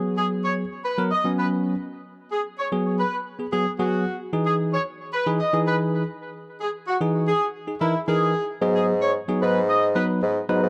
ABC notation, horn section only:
X:1
M:4/4
L:1/16
Q:1/4=112
K:G#m
V:1 name="Horn section"
z G z c z2 B2 d2 B z4 z | z G z c z2 B2 z2 G2 F3 z | z G z c z2 B2 d2 B z4 z | z G z F z2 G2 z2 E2 G3 z |
z G z c z2 B2 d2 B z4 z |]